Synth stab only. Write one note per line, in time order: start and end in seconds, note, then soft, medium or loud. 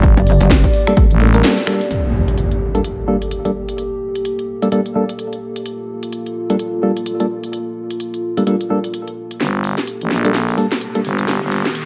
0.87 0.93 G3 loud
0.87 0.93 A#3 medium
0.87 0.93 D4 medium
0.87 0.93 A4 loud
0.97 1.06 G3 medium
0.97 1.06 A#3 medium
0.97 1.06 D4 medium
0.97 1.06 A4 loud
1.20 1.29 G3 medium
1.20 1.29 A#3 medium
1.20 1.29 D4 medium
1.20 1.29 A4 loud
1.34 1.42 G3 medium
1.34 1.42 A#3 medium
1.34 1.42 D4 medium
1.34 1.42 A#4 loud
1.44 1.58 G3 medium
1.44 1.58 A#3 medium
1.44 1.58 D4 medium
1.44 1.58 A4 loud
1.67 1.81 G3 medium
1.67 1.81 A#3 medium
1.67 1.81 D4 medium
1.67 1.81 A4 loud
2.75 2.81 G3 medium
2.75 2.81 A#3 medium
2.75 2.81 D4 medium
2.75 2.81 A4 loud
3.08 3.16 G3 medium
3.08 3.16 A#3 medium
3.08 3.17 D4 medium
3.08 3.17 A4 medium
3.45 3.51 G3 medium
3.45 3.51 A#3 medium
3.45 3.51 D4 medium
3.45 3.51 A4 medium
4.62 4.68 G3 medium
4.62 4.68 A#3 medium
4.62 4.68 D4 medium
4.62 4.68 A4 loud
4.72 4.81 G3 medium
4.72 4.81 A#3 medium
4.72 4.81 D4 medium
4.72 4.81 A4 loud
4.95 5.04 G3 medium
4.95 5.04 A#3 medium
4.95 5.04 D4 medium
4.95 5.04 A4 medium
6.50 6.56 G3 medium
6.50 6.56 A#3 medium
6.50 6.56 D4 medium
6.50 6.56 A4 medium
6.83 6.92 G3 medium
6.83 6.92 A#3 medium
6.83 6.92 D4 medium
6.83 6.92 A4 medium
7.20 7.26 G3 medium
7.20 7.26 A#3 medium
7.20 7.26 D4 medium
7.20 7.26 A4 medium
8.37 8.43 G3 medium
8.37 8.43 A#3 medium
8.37 8.43 D4 medium
8.37 8.43 A4 loud
8.47 8.56 G3 medium
8.47 8.56 A#3 medium
8.47 8.56 D4 medium
8.47 8.56 A4 loud
8.70 8.79 G3 medium
8.70 8.79 A#3 medium
8.70 8.79 D4 medium
8.70 8.79 A4 medium
10.25 10.31 G3 medium
10.25 10.31 A#3 medium
10.25 10.31 D4 medium
10.25 10.31 A4 loud
10.58 10.67 G3 medium
10.58 10.66 A#3 medium
10.58 10.66 D4 medium
10.58 10.66 A4 medium
10.95 11.01 G3 medium
10.95 11.01 A#3 medium
10.95 11.01 D4 medium
10.95 11.01 A4 medium